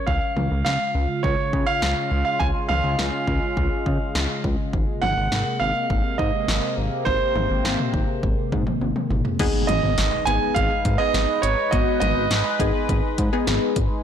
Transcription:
0.07 C#2 C#3 G#3 F4 F5, kick
0.37 C#2, mid tom
0.51 C#2
0.65 C#2 F5, snare
0.95 C#2
1.23 C#2 C#5, kick
1.53 C#3, kick
1.67 F5
1.82 C#2, snare
2.11 C#2
2.25 F5
2.40 C#2 G#5, kick
2.69 C#2 F5, mid tom
2.84 C#2
2.99 C#2, snare
3.27 C#2, kick
3.57 C#2, kick
3.86 C#3, kick
4.15 C#2, snare
4.44 C#2, kick
4.73 G#1 C3 A#3, kick
5.02 G#1 F#5, mid tom
5.17 G#1
5.31 G#1, snare
5.60 G#1 F5
5.90 G#1, kick
6.18 G#2 D#5, kick
6.48 G#1, snare
6.77 G#1
7.05 G#1 C5, kick
7.36 G#1, mid tom
7.50 G#1
7.65 G#1, snare
7.79 mid tom
7.94 G#1, kick
8.23 G#1, kick
8.52 G#2, kick, mid tom
8.67 mid tom
8.81 G#1, high tom
8.96 mid tom
9.10 G#1, mid tom
9.25 floor tom
9.39 G#1 G#3 B3 D#4 G#4 B4, kick, closed hi-hat, crash, impact
9.67 G#1 D#5, closed hi-hat, mid tom
9.83 G#1
9.98 G#1, snare, closed hi-hat
10.25 G#1 B3 D#4 G#4 G#5, closed hi-hat
10.55 G#1 F5, kick, closed hi-hat
10.85 G#2, kick, closed hi-hat
10.98 B3 D#4 G#4 D#5
11.14 G#1, snare, closed hi-hat
11.42 G#1 C#5, closed hi-hat
11.71 G#1 B3 D#4 F#4 D#5, kick, closed hi-hat
12.00 G#1 D#5, closed hi-hat, mid tom
12.16 G#1
12.31 G#1, snare, closed hi-hat
12.60 G#1 B3 D#4 G#4, kick, closed hi-hat
12.89 G#1, kick, closed hi-hat
13.18 G#2, kick, closed hi-hat
13.33 B3 D#4 G#4
13.47 G#1, snare, closed hi-hat
13.76 G#1, kick, closed hi-hat

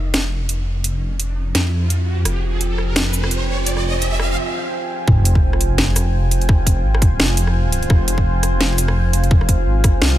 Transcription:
Already playing: F1 F4 C5 G5 G#5, riser
0.14 snare, closed hi-hat
0.49 F1, closed hi-hat
0.84 closed hi-hat
1.20 closed hi-hat
1.55 F2, snare, closed hi-hat
1.90 closed hi-hat
2.25 F1, cross-stick, closed hi-hat
2.61 closed hi-hat
2.78 cross-stick
2.96 snare, closed hi-hat
3.13 shaker
3.24 cross-stick
3.31 F1, closed hi-hat
3.66 closed hi-hat
3.77 cross-stick
4.02 closed hi-hat
4.19 cross-stick
5.08 F1 F4 C5 G5 G#5, kick, sub drop
5.25 closed hi-hat
5.35 kick
5.53 cross-stick
5.61 closed hi-hat
5.78 snare
5.96 cross-stick, closed hi-hat, shaker
6.14 F1
6.31 closed hi-hat
6.42 closed hi-hat
6.49 kick, cross-stick
6.67 kick, closed hi-hat
6.84 G#1
6.95 cross-stick
7.02 kick, closed hi-hat
7.19 F1, snare
7.37 closed hi-hat
7.47 cross-stick
7.72 closed hi-hat
7.83 closed hi-hat
7.90 F1 F5, kick, cross-stick
8.08 closed hi-hat
8.18 kick
8.43 cross-stick, closed hi-hat
8.61 snare
8.78 closed hi-hat, shaker
8.88 cross-stick
8.96 F1
9.13 closed hi-hat
9.24 closed hi-hat
9.31 kick
9.41 cross-stick
9.49 kick, closed hi-hat
9.66 G#1
9.84 kick, cross-stick, closed hi-hat
10.01 C2, snare

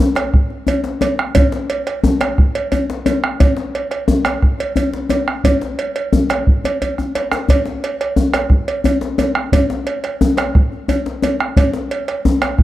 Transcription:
0.15 bombo rim, cowbell, djembe slap
0.34 bombo rim, bombo low
0.50 djembe slap
0.67 cowbell, djembe bass
0.84 djembe slap
1.01 cowbell, djembe slap, djembe tone
1.18 bombo rim, djembe slap
1.35 bombo low, cowbell, djembe bass
1.52 djembe slap
1.70 cowbell
1.87 bombo rim, cowbell
2.04 djembe tone, djembe bass
2.20 bombo rim, cowbell, djembe slap
2.38 bombo rim, bombo low
2.55 cowbell, djembe slap
2.72 cowbell, djembe bass
2.90 djembe slap
3.06 cowbell, djembe slap, djembe tone
3.23 bombo rim, djembe slap
3.40 bombo low, cowbell, djembe bass
3.57 djembe slap
3.75 cowbell
3.91 bombo rim, cowbell
4.08 djembe tone, djembe bass
4.25 bombo rim, cowbell, djembe slap
4.42 bombo rim, bombo low
4.59 cowbell, djembe slap
4.76 cowbell, djembe bass
4.93 djembe slap
5.09 cowbell, djembe slap, djembe tone
5.28 bombo rim
5.44 bombo low, cowbell, djembe bass
5.61 djembe slap
5.79 cowbell, djembe slap
5.96 cowbell
6.13 djembe tone, djembe bass
6.30 bombo rim, cowbell, djembe slap
6.47 bombo low
6.64 cowbell, djembe bass
6.82 cowbell, djembe bass
6.98 bombo rim, djembe bass
7.15 cowbell, djembe slap
7.32 bombo rim, djembe slap
7.48 bombo low, cowbell, djembe bass
7.65 djembe slap
7.84 cowbell
8.01 bombo rim, cowbell
8.16 djembe tone, djembe bass
8.34 bombo rim, cowbell, djembe slap
8.50 bombo rim, bombo low
8.68 cowbell, djembe slap
8.84 cowbell, djembe bass
9.01 djembe slap
9.18 cowbell, djembe slap, djembe tone
9.35 bombo rim, djembe slap
9.52 bombo low, cowbell, djembe bass
9.70 djembe slap
9.87 cowbell
10.04 bombo rim, cowbell
10.21 djembe tone, djembe bass
10.37 bombo rim, cowbell, djembe slap
10.55 bombo rim, bombo low
10.72 djembe slap
10.88 cowbell, djembe bass
11.06 djembe slap
11.22 cowbell, djembe slap, djembe tone
11.39 bombo rim, djembe slap
11.56 bombo low, cowbell, djembe bass
11.73 djembe slap
11.91 cowbell
12.08 bombo rim, cowbell
12.25 djembe tone, djembe bass
12.42 bombo rim, cowbell, djembe slap
12.59 bombo rim, bombo low

